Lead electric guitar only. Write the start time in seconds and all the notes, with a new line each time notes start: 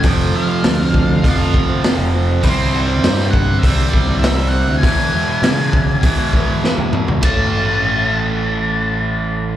0.04 G5
0.35 F5
2.44 C5
2.87 G5
3.30 F#5
3.59 E5
3.89 D5
4.19 E5
4.48 F#5
4.78 G#5
7.25 A5